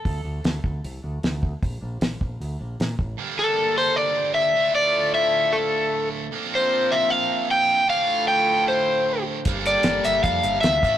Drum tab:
HH |o-o-o-o-|o-o-o-o-|--------|--------|
SD |--o---o-|--o---o-|--------|--------|
BD |o--o---o|o--o---o|--------|--------|

HH |--------|--------|xxxxxxxx|
SD |--------|--------|--o---o-|
BD |--------|--------|o---o--o|